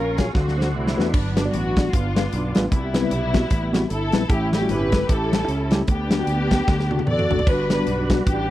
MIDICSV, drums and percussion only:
0, 0, Header, 1, 2, 480
1, 0, Start_track
1, 0, Key_signature, 1, "major"
1, 0, Tempo, 395517
1, 1380, Time_signature, 4, 2, 24, 8
1, 10318, End_track
2, 0, Start_track
2, 0, Title_t, "Drums"
2, 217, Note_on_c, 9, 42, 69
2, 223, Note_on_c, 9, 36, 80
2, 225, Note_on_c, 9, 38, 101
2, 339, Note_off_c, 9, 42, 0
2, 345, Note_off_c, 9, 36, 0
2, 346, Note_off_c, 9, 38, 0
2, 424, Note_on_c, 9, 36, 111
2, 424, Note_on_c, 9, 38, 62
2, 545, Note_off_c, 9, 38, 0
2, 546, Note_off_c, 9, 36, 0
2, 586, Note_on_c, 9, 38, 59
2, 707, Note_off_c, 9, 38, 0
2, 742, Note_on_c, 9, 38, 78
2, 863, Note_off_c, 9, 38, 0
2, 1062, Note_on_c, 9, 38, 91
2, 1183, Note_off_c, 9, 38, 0
2, 1214, Note_on_c, 9, 38, 89
2, 1336, Note_off_c, 9, 38, 0
2, 1381, Note_on_c, 9, 49, 93
2, 1382, Note_on_c, 9, 36, 113
2, 1502, Note_off_c, 9, 49, 0
2, 1503, Note_off_c, 9, 36, 0
2, 1660, Note_on_c, 9, 38, 110
2, 1663, Note_on_c, 9, 42, 69
2, 1781, Note_off_c, 9, 38, 0
2, 1784, Note_off_c, 9, 42, 0
2, 1864, Note_on_c, 9, 42, 97
2, 1985, Note_off_c, 9, 42, 0
2, 2142, Note_on_c, 9, 42, 71
2, 2145, Note_on_c, 9, 36, 87
2, 2150, Note_on_c, 9, 38, 112
2, 2263, Note_off_c, 9, 42, 0
2, 2266, Note_off_c, 9, 36, 0
2, 2271, Note_off_c, 9, 38, 0
2, 2347, Note_on_c, 9, 36, 116
2, 2350, Note_on_c, 9, 42, 111
2, 2468, Note_off_c, 9, 36, 0
2, 2471, Note_off_c, 9, 42, 0
2, 2627, Note_on_c, 9, 38, 111
2, 2627, Note_on_c, 9, 42, 77
2, 2748, Note_off_c, 9, 38, 0
2, 2748, Note_off_c, 9, 42, 0
2, 2823, Note_on_c, 9, 42, 95
2, 2944, Note_off_c, 9, 42, 0
2, 3092, Note_on_c, 9, 42, 76
2, 3103, Note_on_c, 9, 38, 125
2, 3213, Note_off_c, 9, 42, 0
2, 3224, Note_off_c, 9, 38, 0
2, 3299, Note_on_c, 9, 36, 110
2, 3301, Note_on_c, 9, 42, 89
2, 3420, Note_off_c, 9, 36, 0
2, 3423, Note_off_c, 9, 42, 0
2, 3572, Note_on_c, 9, 38, 102
2, 3575, Note_on_c, 9, 42, 73
2, 3693, Note_off_c, 9, 38, 0
2, 3696, Note_off_c, 9, 42, 0
2, 3777, Note_on_c, 9, 42, 99
2, 3899, Note_off_c, 9, 42, 0
2, 4052, Note_on_c, 9, 42, 70
2, 4057, Note_on_c, 9, 36, 81
2, 4059, Note_on_c, 9, 38, 113
2, 4173, Note_off_c, 9, 42, 0
2, 4179, Note_off_c, 9, 36, 0
2, 4181, Note_off_c, 9, 38, 0
2, 4253, Note_on_c, 9, 42, 109
2, 4258, Note_on_c, 9, 36, 113
2, 4375, Note_off_c, 9, 42, 0
2, 4379, Note_off_c, 9, 36, 0
2, 4543, Note_on_c, 9, 38, 106
2, 4544, Note_on_c, 9, 42, 73
2, 4664, Note_off_c, 9, 38, 0
2, 4665, Note_off_c, 9, 42, 0
2, 4737, Note_on_c, 9, 42, 97
2, 4858, Note_off_c, 9, 42, 0
2, 5006, Note_on_c, 9, 42, 83
2, 5017, Note_on_c, 9, 38, 117
2, 5127, Note_off_c, 9, 42, 0
2, 5138, Note_off_c, 9, 38, 0
2, 5214, Note_on_c, 9, 36, 121
2, 5215, Note_on_c, 9, 42, 86
2, 5335, Note_off_c, 9, 36, 0
2, 5336, Note_off_c, 9, 42, 0
2, 5498, Note_on_c, 9, 38, 104
2, 5501, Note_on_c, 9, 42, 70
2, 5619, Note_off_c, 9, 38, 0
2, 5622, Note_off_c, 9, 42, 0
2, 5693, Note_on_c, 9, 42, 99
2, 5814, Note_off_c, 9, 42, 0
2, 5972, Note_on_c, 9, 42, 76
2, 5976, Note_on_c, 9, 36, 84
2, 5980, Note_on_c, 9, 38, 113
2, 6093, Note_off_c, 9, 42, 0
2, 6097, Note_off_c, 9, 36, 0
2, 6101, Note_off_c, 9, 38, 0
2, 6180, Note_on_c, 9, 36, 124
2, 6180, Note_on_c, 9, 42, 118
2, 6301, Note_off_c, 9, 36, 0
2, 6301, Note_off_c, 9, 42, 0
2, 6468, Note_on_c, 9, 38, 121
2, 6469, Note_on_c, 9, 42, 80
2, 6590, Note_off_c, 9, 38, 0
2, 6590, Note_off_c, 9, 42, 0
2, 6656, Note_on_c, 9, 42, 88
2, 6777, Note_off_c, 9, 42, 0
2, 6927, Note_on_c, 9, 42, 80
2, 6937, Note_on_c, 9, 38, 122
2, 7048, Note_off_c, 9, 42, 0
2, 7059, Note_off_c, 9, 38, 0
2, 7130, Note_on_c, 9, 42, 94
2, 7136, Note_on_c, 9, 36, 112
2, 7252, Note_off_c, 9, 42, 0
2, 7258, Note_off_c, 9, 36, 0
2, 7410, Note_on_c, 9, 38, 107
2, 7413, Note_on_c, 9, 42, 73
2, 7532, Note_off_c, 9, 38, 0
2, 7535, Note_off_c, 9, 42, 0
2, 7611, Note_on_c, 9, 42, 103
2, 7732, Note_off_c, 9, 42, 0
2, 7899, Note_on_c, 9, 42, 71
2, 7902, Note_on_c, 9, 36, 83
2, 7907, Note_on_c, 9, 38, 116
2, 8020, Note_off_c, 9, 42, 0
2, 8023, Note_off_c, 9, 36, 0
2, 8028, Note_off_c, 9, 38, 0
2, 8103, Note_on_c, 9, 38, 68
2, 8105, Note_on_c, 9, 36, 118
2, 8224, Note_off_c, 9, 38, 0
2, 8227, Note_off_c, 9, 36, 0
2, 8248, Note_on_c, 9, 38, 60
2, 8369, Note_off_c, 9, 38, 0
2, 8384, Note_on_c, 9, 48, 78
2, 8483, Note_off_c, 9, 48, 0
2, 8483, Note_on_c, 9, 48, 77
2, 8578, Note_on_c, 9, 47, 90
2, 8605, Note_off_c, 9, 48, 0
2, 8700, Note_off_c, 9, 47, 0
2, 8726, Note_on_c, 9, 45, 87
2, 8848, Note_off_c, 9, 45, 0
2, 8866, Note_on_c, 9, 43, 114
2, 8969, Note_off_c, 9, 43, 0
2, 8969, Note_on_c, 9, 43, 94
2, 9065, Note_on_c, 9, 36, 120
2, 9068, Note_on_c, 9, 49, 81
2, 9091, Note_off_c, 9, 43, 0
2, 9186, Note_off_c, 9, 36, 0
2, 9189, Note_off_c, 9, 49, 0
2, 9345, Note_on_c, 9, 38, 106
2, 9348, Note_on_c, 9, 42, 69
2, 9466, Note_off_c, 9, 38, 0
2, 9469, Note_off_c, 9, 42, 0
2, 9548, Note_on_c, 9, 42, 97
2, 9669, Note_off_c, 9, 42, 0
2, 9827, Note_on_c, 9, 42, 74
2, 9828, Note_on_c, 9, 36, 81
2, 9835, Note_on_c, 9, 38, 109
2, 9948, Note_off_c, 9, 42, 0
2, 9949, Note_off_c, 9, 36, 0
2, 9956, Note_off_c, 9, 38, 0
2, 10033, Note_on_c, 9, 36, 121
2, 10035, Note_on_c, 9, 42, 113
2, 10154, Note_off_c, 9, 36, 0
2, 10157, Note_off_c, 9, 42, 0
2, 10318, End_track
0, 0, End_of_file